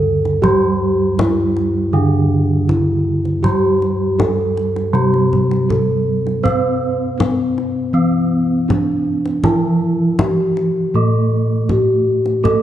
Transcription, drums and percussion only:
0.25 kendang slap
0.44 kendang low
1.19 kendang slap, kendang high, kendang low
1.57 kendang slap
2.69 kendang slap, kendang low
3.25 kendang slap
3.44 kendang low
3.82 kendang slap
4.20 kendang slap, kendang high, kendang low
4.57 kendang slap
4.76 kendang slap
4.95 kendang slap
5.14 kendang slap
5.33 kendang low
5.51 kendang slap
5.70 kendang slap, kendang low
6.27 kendang slap
6.45 kendang low
7.20 kendang slap, kendang high, kendang low
7.58 kendang slap
8.70 kendang slap, kendang low
9.26 kendang slap
9.44 kendang low
10.19 kendang slap, kendang high, kendang low
10.57 kendang slap
11.69 kendang slap, kendang low
12.26 kendang slap
12.45 kendang low

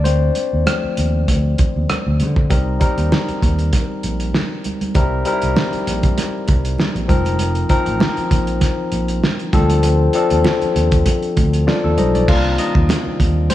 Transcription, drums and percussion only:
0.05 closed hi-hat, muted conga
0.35 closed hi-hat, muted conga
0.67 cross-stick, closed hi-hat, high conga
0.97 closed hi-hat
1.28 kick, cross-stick, closed hi-hat, muted conga
1.58 kick, closed hi-hat, low conga
1.89 cross-stick, closed hi-hat, high conga
2.20 closed hi-hat, high conga
2.36 kick
2.50 kick, closed hi-hat, muted conga
2.81 kick, closed hi-hat, muted conga
2.98 closed hi-hat
3.12 snare, high conga
3.28 closed hi-hat
3.42 kick, closed hi-hat, low conga
3.59 closed hi-hat
3.73 kick, snare, closed hi-hat, muted conga, low conga
4.03 closed hi-hat
4.20 closed hi-hat
4.34 snare, high conga
4.64 closed hi-hat, high conga
4.81 closed hi-hat, high conga
4.94 kick, closed hi-hat, muted conga
5.25 closed hi-hat
5.42 closed hi-hat
5.56 snare, high conga
5.73 closed hi-hat
5.87 closed hi-hat
6.03 kick, closed hi-hat
6.18 snare, closed hi-hat, muted conga
6.48 kick, closed hi-hat
6.65 closed hi-hat
6.78 snare, high conga
6.96 closed hi-hat
7.09 kick, closed hi-hat, high conga
7.25 closed hi-hat, high conga
7.39 closed hi-hat, muted conga
7.55 closed hi-hat
7.69 kick, closed hi-hat
7.86 closed hi-hat
8.00 snare, high conga
8.17 closed hi-hat
8.31 kick, closed hi-hat, low conga
8.47 closed hi-hat
8.61 kick, snare, closed hi-hat, muted conga, low conga
8.92 closed hi-hat
9.08 closed hi-hat
9.23 snare, high conga
9.39 closed hi-hat
9.53 kick, closed hi-hat, high conga
9.69 closed hi-hat, high conga
9.83 closed hi-hat, muted conga
10.13 closed hi-hat
10.30 closed hi-hat
10.44 snare, high conga
10.62 closed hi-hat
10.76 closed hi-hat
10.92 kick, closed hi-hat
11.06 kick, closed hi-hat, muted conga
11.23 closed hi-hat
11.37 kick, closed hi-hat, low conga
11.53 closed hi-hat
11.68 snare, high conga
11.98 closed hi-hat, high conga
12.15 closed hi-hat, high conga
12.28 kick, crash, muted conga
12.58 closed hi-hat, muted conga
12.75 kick
12.89 snare, closed hi-hat, high conga
13.20 kick, closed hi-hat, low conga
13.50 snare, closed hi-hat, muted conga, low conga

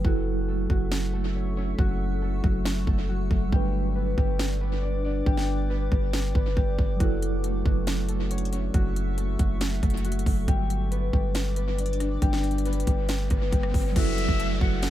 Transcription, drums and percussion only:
0.05 kick
0.70 kick
0.92 snare
1.79 kick
2.44 kick
2.65 snare
2.87 kick
3.31 kick
3.53 kick
4.18 kick
4.39 snare
5.26 kick
5.37 snare
5.92 kick
6.13 snare
6.35 kick
6.57 kick
6.79 kick
7.00 kick, closed hi-hat
7.22 closed hi-hat
7.44 closed hi-hat
7.66 kick
7.87 snare, closed hi-hat
8.09 closed hi-hat
8.31 closed hi-hat
8.38 closed hi-hat
8.45 closed hi-hat
8.53 closed hi-hat
8.74 kick, closed hi-hat
8.96 closed hi-hat
9.18 closed hi-hat
9.39 kick, closed hi-hat
9.61 snare, closed hi-hat
9.83 kick, closed hi-hat
9.90 closed hi-hat
9.97 closed hi-hat
10.05 closed hi-hat
10.12 closed hi-hat
10.19 closed hi-hat
10.26 kick, open hi-hat
10.48 kick, closed hi-hat
10.70 closed hi-hat
10.92 closed hi-hat
11.13 kick
11.35 snare, closed hi-hat
11.56 closed hi-hat
11.79 closed hi-hat
11.86 closed hi-hat
11.93 closed hi-hat
12.00 cross-stick, closed hi-hat
12.22 kick, closed hi-hat
12.33 snare
12.44 closed hi-hat
12.51 closed hi-hat
12.58 closed hi-hat
12.65 closed hi-hat
12.73 closed hi-hat
12.80 closed hi-hat
12.87 kick, closed hi-hat
13.09 snare, closed hi-hat
13.30 kick, cross-stick, closed hi-hat
13.52 kick, closed hi-hat
13.63 cross-stick
13.74 kick, open hi-hat
13.96 kick, closed hi-hat, crash
14.18 closed hi-hat
14.29 kick
14.40 closed hi-hat
14.61 kick
14.83 snare, closed hi-hat

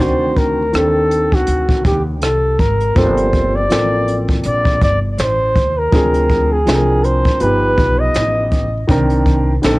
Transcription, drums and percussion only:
0.00 kick
0.37 kick, closed hi-hat
0.73 cross-stick, closed hi-hat
1.11 closed hi-hat
1.32 kick
1.47 closed hi-hat
1.69 kick
1.85 kick, closed hi-hat
2.22 cross-stick, closed hi-hat
2.59 kick, closed hi-hat
2.80 closed hi-hat
2.96 kick, closed hi-hat
3.17 closed hi-hat
3.33 kick, closed hi-hat
3.70 snare, closed hi-hat
4.08 closed hi-hat
4.28 kick, closed hi-hat
4.43 closed hi-hat
4.65 kick
4.81 kick, closed hi-hat
5.18 snare, closed hi-hat
5.56 kick, closed hi-hat
5.92 kick, closed hi-hat
6.14 closed hi-hat
6.30 kick, closed hi-hat
6.67 snare, closed hi-hat
7.04 closed hi-hat
7.25 kick, closed hi-hat
7.40 closed hi-hat
7.78 kick, closed hi-hat
8.14 snare, closed hi-hat
8.52 kick, closed hi-hat
8.89 kick, closed hi-hat
9.10 closed hi-hat
9.26 kick, closed hi-hat
9.63 snare, closed hi-hat

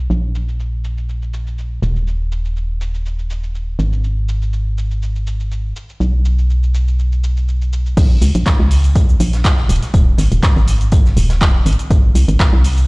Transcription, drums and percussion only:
0.11 shaker
0.35 shaker
0.48 shaker
0.60 shaker
0.84 shaker
0.98 shaker
1.09 shaker
1.22 shaker
1.34 shaker
1.47 shaker
1.58 shaker
1.83 shaker
1.96 shaker
2.07 shaker
2.32 shaker
2.45 shaker
2.56 shaker
2.81 shaker
2.94 shaker
3.06 shaker
3.19 shaker
3.30 shaker
3.43 shaker
3.55 shaker
3.79 shaker
3.93 shaker
4.04 shaker
4.29 shaker
4.42 shaker
4.53 shaker
4.78 shaker
4.91 shaker
5.02 shaker
5.16 shaker
5.27 shaker
5.40 shaker
5.52 shaker
5.76 shaker
5.89 shaker
6.01 shaker
6.25 shaker
6.39 shaker
6.50 shaker
6.63 shaker
6.75 shaker
6.88 shaker
6.99 shaker
7.12 shaker
7.24 shaker
7.37 shaker
7.48 shaker
7.62 shaker
7.73 shaker
7.86 shaker
7.97 kick, closed hi-hat, crash, shaker
8.21 closed hi-hat, open hi-hat, shaker
8.35 closed hi-hat, shaker
8.46 kick, snare, clap, closed hi-hat, shaker
8.71 open hi-hat, shaker
8.84 closed hi-hat, shaker
8.96 kick, closed hi-hat, shaker
9.09 shaker
9.20 closed hi-hat, open hi-hat, shaker
9.33 snare, closed hi-hat, shaker
9.44 kick, snare, clap, closed hi-hat, shaker
9.57 snare
9.69 closed hi-hat, open hi-hat, shaker
9.76 closed hi-hat
9.83 snare, closed hi-hat, shaker
9.94 kick, closed hi-hat, shaker
10.18 snare, closed hi-hat, open hi-hat, shaker
10.32 closed hi-hat, shaker
10.43 kick, snare, clap, closed hi-hat, shaker
10.56 closed hi-hat
10.68 closed hi-hat, open hi-hat, shaker
10.81 closed hi-hat, shaker
10.92 kick, closed hi-hat, shaker
11.06 snare, shaker
11.16 closed hi-hat, open hi-hat, shaker
11.30 snare, closed hi-hat, shaker
11.41 kick, snare, clap, closed hi-hat, shaker
11.66 closed hi-hat, open hi-hat, shaker
11.73 closed hi-hat
11.79 closed hi-hat, shaker
11.91 kick, closed hi-hat, shaker
12.15 closed hi-hat, open hi-hat, shaker
12.29 closed hi-hat, shaker
12.40 kick, snare, clap, closed hi-hat, shaker
12.64 open hi-hat, shaker
12.78 closed hi-hat, shaker

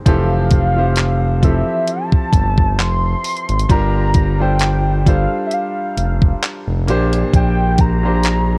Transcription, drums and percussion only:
0.06 kick, closed hi-hat
0.51 kick, closed hi-hat
0.96 clap, closed hi-hat
1.43 kick, closed hi-hat
1.88 closed hi-hat
2.12 kick
2.33 kick, closed hi-hat
2.58 kick
2.79 clap, closed hi-hat
3.24 closed hi-hat, open hi-hat
3.37 closed hi-hat
3.49 closed hi-hat
3.59 closed hi-hat
3.70 kick, closed hi-hat
4.14 kick, closed hi-hat
4.59 clap, closed hi-hat
5.06 kick, closed hi-hat
5.51 closed hi-hat
5.98 closed hi-hat
6.22 kick
6.43 clap, closed hi-hat
6.88 closed hi-hat
7.13 closed hi-hat
7.33 kick, closed hi-hat
7.78 kick, closed hi-hat
8.23 clap, closed hi-hat

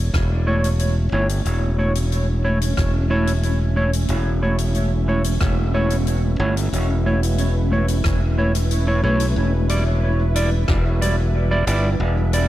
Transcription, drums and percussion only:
0.14 kick, cross-stick, closed hi-hat
0.64 closed hi-hat
0.79 closed hi-hat
1.29 closed hi-hat
1.45 closed hi-hat
1.95 closed hi-hat
2.12 closed hi-hat
2.61 closed hi-hat
2.77 kick, cross-stick, closed hi-hat
3.27 closed hi-hat
3.43 closed hi-hat
3.93 closed hi-hat
4.08 closed hi-hat
4.58 closed hi-hat
4.75 closed hi-hat
5.24 closed hi-hat
5.41 kick, cross-stick, closed hi-hat
5.90 closed hi-hat
6.07 closed hi-hat
6.57 closed hi-hat
6.73 closed hi-hat
7.23 closed hi-hat
7.38 closed hi-hat
7.88 closed hi-hat
8.04 kick, cross-stick, closed hi-hat
8.55 closed hi-hat
8.71 closed hi-hat
9.20 closed hi-hat
9.69 closed hi-hat
10.36 closed hi-hat
10.68 kick, cross-stick
11.02 closed hi-hat
11.67 closed hi-hat
12.33 closed hi-hat

